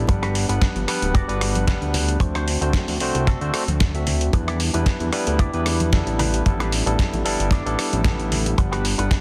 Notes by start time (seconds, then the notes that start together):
0.07 G1 G3 B3 D4 B4 F#5, muted clean electric guitar stroke, kick, closed hi-hat, high conga
0.22 F#4 G4 B4, cross-stick, closed hi-hat
0.35 open hi-hat
0.49 G1 G3 B3 D4 B4 F#5, muted clean electric guitar stroke, closed hi-hat
0.61 muted clean electric guitar stroke, kick, snare, closed hi-hat
0.76 G1, closed hi-hat, high conga
0.87 G3 B3 D4 B4 F#5, cross-stick, open hi-hat
1.02 D1, closed hi-hat
1.14 F#4 G4 D5, kick, closed hi-hat
1.28 G1 G3 B3 D4 B4 F#5, closed hi-hat
1.41 cross-stick, open hi-hat
1.55 closed hi-hat, high conga
1.67 G3 B3 D4 B4 F#5, kick, snare, closed hi-hat, low conga
1.82 D2, closed hi-hat
1.94 muted clean electric guitar stroke, open hi-hat, low conga
2.09 closed hi-hat
2.20 D2 C4 F#4 C5, muted clean electric guitar stroke, kick, closed hi-hat, high conga
2.35 D4 F#4 C5, cross-stick, closed hi-hat
2.48 open hi-hat
2.61 D2 A3 C4 D4 F#4 C5, muted clean electric guitar stroke, closed hi-hat
2.73 muted clean electric guitar stroke, kick, snare, closed hi-hat
2.88 D2, open hi-hat, high conga
3.00 C2 A3 C4 D4 F#4 C5, open hi-hat
3.15 C2, closed hi-hat
3.27 D4 F#4 A4, kick, snare, closed hi-hat
3.41 D2 A3 C4 D4 F#4 C5, closed hi-hat
3.53 A3 C4 D4 F#4 C5, cross-stick, open hi-hat
3.68 D2, closed hi-hat, high conga
3.80 kick, snare, closed hi-hat, low conga
3.94 A3 C4 D4 F#4 E5, closed hi-hat
4.07 muted clean electric guitar stroke, open hi-hat, low conga
4.21 closed hi-hat
4.33 E2 G3 B3 D4 E4 B4, muted clean electric guitar stroke, kick, closed hi-hat, high bongo, high conga
4.47 E4 G4 D5, cross-stick, closed hi-hat
4.60 open hi-hat
4.74 E2 G3 B3 D4 E4 B4, muted clean electric guitar stroke, closed hi-hat, high bongo
4.86 muted clean electric guitar stroke, kick, snare, closed hi-hat
5.00 E2, closed hi-hat, high conga
5.12 G3 B3 D4 E4 B4, cross-stick, open hi-hat
5.26 D2, closed hi-hat, high bongo
5.39 E4 G4 D5, kick, closed hi-hat
5.53 E2 G3 B3 D4 E4 B4, closed hi-hat
5.66 cross-stick, open hi-hat, high bongo
5.80 closed hi-hat, high conga
5.92 G3 B3 D4 E4 A4, kick, snare, closed hi-hat, low conga
6.07 A1, closed hi-hat
6.19 D4 G4 B4, open hi-hat, high bongo, low conga
6.34 closed hi-hat
6.45 A1 G3 B3 D4 E4 A4, kick, closed hi-hat, high conga
6.59 D4 G4 B4, cross-stick, closed hi-hat, high bongo
6.72 open hi-hat
6.86 A1 G3 B3 D4 E4 A4, muted clean electric guitar stroke, closed hi-hat
6.99 muted clean electric guitar stroke, kick, snare, closed hi-hat
7.13 A1, closed hi-hat, high bongo, high conga
7.25 G1 G3 B3 D4 E4 A4, open hi-hat
7.40 G1, closed hi-hat
7.51 D4 G4 D5, kick, snare, closed hi-hat, high bongo
7.65 A1 G3 B3 D4 E4 A4, closed hi-hat
7.79 cross-stick, open hi-hat
7.93 A1, closed hi-hat, high conga
8.04 G3 B3 D4 E4 A4, kick, snare, closed hi-hat, high bongo, low conga
8.20 closed hi-hat
8.31 muted clean electric guitar stroke, open hi-hat, low conga
8.46 closed hi-hat, high bongo
8.57 G1 G3 B3 D4 B4 F#5, muted clean electric guitar stroke, kick, closed hi-hat, high conga
8.72 F#4 G4 B4, cross-stick, closed hi-hat
8.85 open hi-hat
8.98 G1 G3 B3 D4 B4 F#5, muted clean electric guitar stroke, closed hi-hat, high bongo
9.11 muted clean electric guitar stroke, kick, snare, closed hi-hat